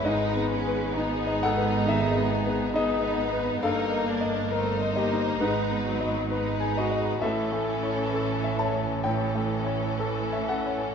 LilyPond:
<<
  \new Staff \with { instrumentName = "Grand piano" } { \time 4/4 \key gis \phrygian \tempo 4 = 66 << { <gis' dis''>4. <a' fis''>8 <gis' e''>4 <gis' dis''>4 | <a' eis''>4. <g' dis''>8 <dis' b'>4 r8 <fis' dis''>8 | <a' e''>4. <cis'' a''>8 <cis'' g''>4. <a' fis''>8 | } \\ { \tuplet 3/2 { gis,8 b8 b'8 dis'8 dis''8 b'8 dis8 b8 b'8 dis'8 dis''8 b'8 } | \tuplet 3/2 { g,8 ais8 dis''8 ais'8 dis''8 dis'8 gis,8 b8 dis''8 b'8 gis''8 dis''8 } | \tuplet 3/2 { a,8 a8 cis''8 a'8 e''8 cis''8 a,8 a8 cis''8 a'8 e''8 cis''8 } | } >> }
  \new Staff \with { instrumentName = "Violin section" } { \time 4/4 \key gis \phrygian b'4 gis'4 gis'4 b'4 | ais'4 bis'4 b'4 b'4 | a'2 a'2 | }
  \new Staff \with { instrumentName = "Violin section" } { \time 4/4 \key gis \phrygian dis'8 cis'8 dis'2 dis'4 | dis'8 d'8 dis'2 dis'4 | cis'2 cis'2 | }
  \new Staff \with { instrumentName = "Viola section" } { \clef bass \time 4/4 \key gis \phrygian gis4 b8 b4. b4 | ais4 a8 ais8 gis8 fis8 gis4 | e2 e2 | }
  \new Staff \with { instrumentName = "Cello section" } { \clef bass \time 4/4 \key gis \phrygian gis,1 | g,2 gis,2 | a,1 | }
  \new Staff \with { instrumentName = "Double bass section" } { \clef bass \time 4/4 \key gis \phrygian gis,,1 | g,,2 gis,,2 | a,,1 | }
>>